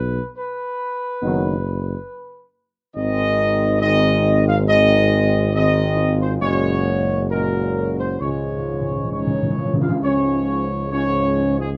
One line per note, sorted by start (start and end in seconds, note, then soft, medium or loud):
0.00 0.20 B1 medium
0.00 0.30 B4 medium
0.35 2.49 B4 medium
1.22 1.95 F#1 medium
1.22 1.56 D#3 medium
1.22 1.56 F#3 medium
1.22 1.55 B3 medium
1.22 1.55 D#4 medium
2.95 6.37 G#1 medium
2.95 3.78 D#3 medium
2.95 3.78 G#3 medium
2.95 3.78 C4 medium
2.95 3.78 D#4 medium
2.95 3.78 D#5 loud
3.81 4.64 D#3 medium
3.81 4.64 G#3 medium
3.81 4.63 C4 medium
3.81 4.63 D#4 medium
3.81 4.42 D#5 loud
4.47 4.57 F5 medium
4.67 5.50 D#3 medium
4.67 5.50 G#3 medium
4.67 5.50 C4 medium
4.67 5.50 D#4 medium
4.67 5.50 D#5 loud
5.53 6.38 D#3 medium
5.53 6.37 G#3 medium
5.53 6.37 C4 medium
5.53 5.94 D#4 medium
5.53 6.16 D#5 loud
5.96 6.41 F4 medium
6.20 6.30 C5 medium
6.41 8.16 F#1 medium
6.41 7.25 A#2 medium
6.41 7.25 G#3 medium
6.41 7.29 C#4 medium
6.41 7.30 F#4 medium
6.41 7.25 C#5 medium
7.30 8.17 A#2 medium
7.30 8.17 G#3 medium
7.30 8.17 C#4 medium
7.30 8.17 F#4 medium
7.30 7.93 A#4 medium
7.99 8.19 C5 medium
8.20 9.66 C#2 medium
8.20 9.71 G#2 medium
8.20 8.26 C#3 soft
8.20 9.67 G#3 medium
8.20 8.98 C#4 soft
8.20 9.02 F4 medium
8.20 9.07 C#5 medium
8.28 8.34 C#3 soft
8.43 8.49 C#3 soft
8.51 8.57 C#3 soft
8.58 8.65 C#3 soft
8.66 8.72 C#3 soft
8.73 8.80 C#3 soft
8.81 8.88 C#3 soft
8.89 8.95 C#3 soft
8.96 9.03 C#3 soft
9.04 9.10 C#3 medium
9.11 9.19 C#3 medium
9.11 9.76 C#4 medium
9.11 9.54 D#4 medium
9.11 9.76 C#5 medium
9.20 9.26 C#3 medium
9.27 9.33 C#3 medium
9.34 9.42 C#3 medium
9.43 9.49 C#3 medium
9.50 9.57 C#3 medium
9.58 9.64 C#3 medium
9.58 9.80 F4 medium
9.66 9.72 C#3 medium
9.74 9.80 C#3 medium
9.81 9.88 C#3 medium
9.81 10.02 F4 medium
9.81 9.92 F5 medium
9.89 9.97 C#3 medium
10.03 11.77 C#2 medium
10.03 10.89 G#2 medium
10.03 10.88 F3 medium
10.03 10.75 C#4 medium
10.03 10.88 C#5 medium
10.92 11.77 G#2 medium
10.92 11.77 F3 medium
10.92 11.54 C#4 medium
10.92 11.55 C#5 medium
11.59 11.69 G#3 medium
11.59 11.70 G#4 medium